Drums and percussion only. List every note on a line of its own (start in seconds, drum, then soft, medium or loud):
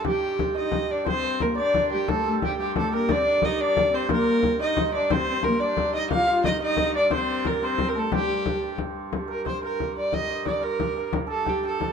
0.05 frame drum medium
0.22 frame drum soft
0.39 frame drum medium
0.72 frame drum medium
1.06 frame drum medium
1.40 frame drum medium
1.74 frame drum medium
2.08 frame drum medium
2.42 frame drum medium
2.76 frame drum medium
3.09 frame drum loud
3.42 frame drum medium
3.77 frame drum medium
4.09 frame drum medium
4.26 frame drum soft
4.43 frame drum medium
4.77 frame drum medium
4.94 frame drum soft
5.10 frame drum loud
5.43 frame drum medium
5.77 frame drum medium
6.11 frame drum medium
6.44 frame drum medium
6.77 frame drum medium
7.11 frame drum medium
7.45 frame drum medium
7.78 frame drum medium
8.12 frame drum medium
8.46 frame drum medium
8.78 frame drum medium
9.13 frame drum medium
9.46 frame drum medium
9.63 frame drum soft
9.80 frame drum medium
9.97 frame drum soft
10.13 frame drum medium
10.46 frame drum medium
10.63 frame drum soft
10.80 frame drum medium
10.97 frame drum soft
11.13 frame drum medium
11.46 frame drum medium
11.64 frame drum soft
11.81 frame drum medium